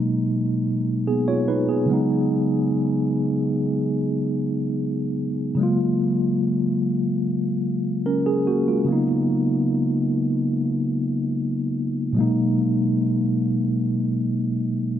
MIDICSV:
0, 0, Header, 1, 2, 480
1, 0, Start_track
1, 0, Tempo, 500000
1, 14396, End_track
2, 0, Start_track
2, 0, Title_t, "Tine electric piano"
2, 0, Program_c, 0, 4
2, 0, Control_c, 0, 64, 127
2, 0, Note_on_c, 0, 47, 68
2, 0, Note_on_c, 0, 54, 61
2, 0, Note_on_c, 0, 56, 59
2, 0, Note_on_c, 0, 58, 59
2, 0, Note_on_c, 0, 63, 79
2, 999, Note_off_c, 0, 58, 0
2, 1009, Note_off_c, 0, 63, 0
2, 1032, Note_on_c, 0, 68, 59
2, 1037, Note_on_c, 0, 59, 52
2, 1217, Note_off_c, 0, 68, 0
2, 1220, Note_off_c, 0, 59, 0
2, 1228, Note_on_c, 0, 73, 69
2, 1233, Note_on_c, 0, 65, 58
2, 1414, Note_off_c, 0, 73, 0
2, 1417, Note_off_c, 0, 65, 0
2, 1423, Note_on_c, 0, 71, 68
2, 1428, Note_on_c, 0, 63, 57
2, 1610, Note_off_c, 0, 71, 0
2, 1613, Note_off_c, 0, 63, 0
2, 1621, Note_on_c, 0, 68, 62
2, 1628, Note_on_c, 0, 59, 51
2, 1759, Note_off_c, 0, 47, 0
2, 1769, Note_off_c, 0, 54, 0
2, 1778, Note_off_c, 0, 56, 0
2, 1781, Note_on_c, 0, 49, 73
2, 1798, Note_on_c, 0, 54, 64
2, 1818, Note_on_c, 0, 56, 69
2, 1825, Note_off_c, 0, 59, 0
2, 1827, Control_c, 0, 64, 0
2, 1836, Note_on_c, 0, 59, 68
2, 1857, Note_on_c, 0, 63, 77
2, 1988, Control_c, 0, 64, 127
2, 1995, Note_off_c, 0, 68, 0
2, 4917, Note_off_c, 0, 49, 0
2, 4925, Note_off_c, 0, 54, 0
2, 4935, Note_off_c, 0, 56, 0
2, 4944, Note_off_c, 0, 59, 0
2, 4954, Note_off_c, 0, 63, 0
2, 5328, Note_on_c, 0, 49, 71
2, 5348, Note_on_c, 0, 54, 67
2, 5368, Note_on_c, 0, 56, 62
2, 5379, Control_c, 0, 64, 0
2, 5387, Note_on_c, 0, 58, 62
2, 5406, Note_on_c, 0, 65, 78
2, 5571, Control_c, 0, 64, 127
2, 7302, Note_off_c, 0, 56, 0
2, 7311, Note_off_c, 0, 58, 0
2, 7321, Note_off_c, 0, 65, 0
2, 7738, Note_on_c, 0, 70, 62
2, 7743, Note_on_c, 0, 61, 53
2, 7923, Note_off_c, 0, 70, 0
2, 7926, Note_off_c, 0, 61, 0
2, 7932, Note_on_c, 0, 68, 69
2, 8119, Note_off_c, 0, 68, 0
2, 8133, Note_on_c, 0, 66, 67
2, 8139, Note_on_c, 0, 58, 56
2, 8319, Note_off_c, 0, 66, 0
2, 8322, Note_off_c, 0, 58, 0
2, 8334, Note_on_c, 0, 65, 59
2, 8340, Note_on_c, 0, 56, 53
2, 8465, Note_off_c, 0, 49, 0
2, 8475, Note_off_c, 0, 54, 0
2, 8491, Note_on_c, 0, 49, 69
2, 8513, Note_on_c, 0, 54, 64
2, 8530, Note_on_c, 0, 58, 65
2, 8537, Control_c, 0, 64, 0
2, 8550, Note_on_c, 0, 59, 62
2, 8568, Note_on_c, 0, 63, 77
2, 8705, Note_off_c, 0, 65, 0
2, 8709, Note_off_c, 0, 56, 0
2, 8722, Control_c, 0, 64, 127
2, 11625, Note_off_c, 0, 49, 0
2, 11636, Note_off_c, 0, 54, 0
2, 11640, Note_on_c, 0, 46, 55
2, 11644, Note_off_c, 0, 58, 0
2, 11655, Note_off_c, 0, 59, 0
2, 11661, Note_on_c, 0, 54, 63
2, 11664, Note_off_c, 0, 63, 0
2, 11679, Note_on_c, 0, 56, 63
2, 11693, Control_c, 0, 64, 0
2, 11699, Note_on_c, 0, 58, 65
2, 11702, Note_on_c, 0, 47, 67
2, 11717, Note_on_c, 0, 63, 75
2, 11722, Note_off_c, 0, 46, 0
2, 11887, Control_c, 0, 64, 127
2, 14394, Note_off_c, 0, 54, 0
2, 14396, Note_off_c, 0, 47, 0
2, 14396, Note_off_c, 0, 56, 0
2, 14396, Note_off_c, 0, 58, 0
2, 14396, Note_off_c, 0, 63, 0
2, 14396, End_track
0, 0, End_of_file